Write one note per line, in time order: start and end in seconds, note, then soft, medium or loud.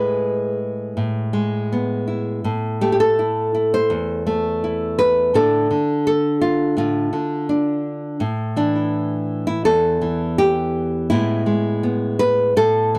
0.00 0.96 A2 medium
0.00 1.32 G#3 medium
0.00 0.59 G#4 medium
0.00 2.07 B4 medium
0.97 2.43 A2 medium
1.33 2.39 G#3 medium
1.73 2.45 B3 soft
2.08 3.18 E4 soft
2.44 3.90 A2 medium
2.81 4.26 A3 medium
2.81 2.91 G4 medium
2.92 2.99 G4 medium
3.00 4.44 A4 medium
3.19 3.53 E4 soft
3.55 4.62 E4 soft
3.74 4.98 C5 medium
3.90 5.34 E2 medium
4.26 5.34 A3 medium
4.64 5.30 E4 soft
4.99 5.34 B4 medium
5.34 5.70 A2 medium
5.34 5.69 D3 soft
5.34 7.48 D4 soft
5.34 6.06 A4 medium
5.71 7.12 D3 medium
6.07 6.41 A4 medium
6.41 6.77 F4 medium
6.77 7.12 A2 medium
6.77 8.21 F4 medium
7.13 8.20 D3 medium
7.49 8.16 D4 soft
8.20 9.64 A2 medium
8.56 10.01 E3 medium
8.56 9.46 D4 medium
8.75 9.46 E4 medium
9.47 9.65 E4 medium
9.65 11.10 E2 medium
9.65 10.38 A4 loud
10.01 11.11 E3 medium
10.38 11.09 G4 loud
11.10 12.55 A2 medium
11.10 11.45 G#3 soft
11.10 11.82 B3 soft
11.10 12.19 E4 loud
11.46 12.52 G#3 medium
11.83 12.57 B3 soft
12.19 12.57 B4 loud
12.56 12.99 A2 medium
12.56 12.99 A4 loud
12.95 12.99 E3 medium